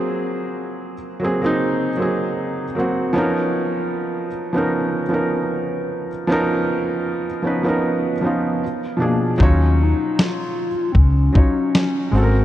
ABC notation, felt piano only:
X:1
M:4/4
L:1/16
Q:"Swing 16ths" 1/4=77
K:Ebm
V:1 name="Felt piano"
[G,B,=CA]4- [G,B,CA] z [G,B,CA] [G,B,CE]2 z [G,B,CA]3 z [G,B,CG]2 | [F,CDEB]6 z [F,CDEB]2 z [F,CDEB]4- [F,CDEB] z | [F,CDEB]4- [F,CDEB] z [F,CDEc] [F,CDEB]2 z [F,CDEF]2 z2 [=B,,F,=DA]2 | [G,EFd]6- [G,EFd] z3 [G,EFd]4 [A,=CG=AB]2 |]